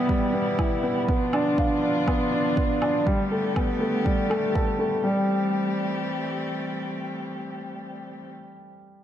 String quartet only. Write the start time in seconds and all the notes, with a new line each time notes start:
Already playing: B2 E3 G3 E4 G4
1.08 D3 F3 D4 F4
3.07 G3 A3 B3 G4
5.03 E3 G3 A3 C4 G4